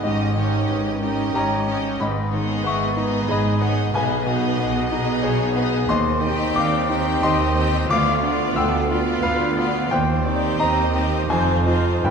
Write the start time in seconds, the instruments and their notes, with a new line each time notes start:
0.02 double bass section G#1, grand piano G#2 G4 D#5, cello section G#2, viola section C#4 D#4, violin section G4 D#5
0.36 grand piano D#3, viola section C#4 D#4, violin section G4 C#5 D#5
0.69 double bass section G#1, cello section G#2, grand piano C#4, violin section B4
1.02 viola section C#4 D#4, grand piano D#4, violin section G4 A#4 D#5
1.34 double bass section G#1, cello section G#2, grand piano G4 C#5 A#5, violin section D#5
1.67 grand piano C#4, viola section C#4 D#4, violin section G4 C#5 D#5
2.00 double bass section G#1, grand piano G#2 D#5 B5, cello section G#2, violin section B4
2.32 grand piano D#3, viola section B3 D#4, violin section G#4 C#5 D#5
2.64 double bass section G#1, cello section G#2, grand piano B3 E5 C#6, violin section B4
2.96 viola section B3 D#4, grand piano D#4, violin section G#4 D#5
3.28 double bass section G#1, cello section G#2, grand piano G#4 D#5 B5, violin section D#5
3.59 viola section B3 D#4, grand piano B3, violin section G#4 C#5 D#5
3.92 double bass section B1, grand piano B1 G#5, cello section B2, viola section B3 D#4, violin section G#4 B4 D#5
3.97 grand piano B4
4.24 grand piano B2, viola section B3 D#4, violin section G#4 D#5
4.58 double bass section B1, cello section B2, grand piano B3, violin section D#5
4.90 viola section B3 D#4, grand piano D#4, violin section G#4 D#5
5.23 double bass section B1, cello section B2, grand piano G#4, violin section C#5
5.55 grand piano B3, viola section B3 D#4, violin section G#4 B4 D#5
5.88 double bass section D#2, grand piano D#2 D#5 C6, cello section D#2, violin section C5
6.21 grand piano D#3, viola section C4 D#4, violin section G4 D#5 G5
6.55 cello section D#2, double bass section D#2, grand piano C4 F5 D6, violin section D5
6.88 viola section C4 D#4, grand piano D#4, violin section G4 C5 G5
7.22 double bass section D#2, cello section D#2, grand piano G4 D#5 C6, violin section D#5
7.55 grand piano C4, viola section C4 D#4, violin section G4 G5
7.89 grand piano D2 F5 D6, cello section D2, double bass section D2, viola section B3 F4, violin section F4 D5 F5
8.22 grand piano D3, viola section B3 F4, violin section F4 D5
8.56 cello section D2, double bass section D2, grand piano B3 G5 E6, violin section A4
8.89 viola section B3 F4, violin section F4 B4 D5, grand piano F4
9.23 double bass section D2, cello section D2, grand piano B4 F5
9.56 viola section B3 F4, grand piano B3, violin section F4 D5
9.90 double bass section D#2, cello section D#2, grand piano D#2 C5 G5, violin section C5
10.24 grand piano D#3, viola section C4 D#4, violin section G4 C5 D5
10.58 cello section D#2, double bass section D#2, grand piano C4 D#5 A#5, violin section D#5
10.93 viola section C4 D#4, grand piano G4, violin section G4 C5
11.29 double bass section F1, grand piano F2 C5 G#5, cello section F2, viola section C4 D#4, violin section F4 C5
11.65 viola section C4 D#4, grand piano F4 D#5, violin section F4 C5
12.03 double bass section G1, cello section G2, timpani G2, grand piano G2 B4 G5, violin section B4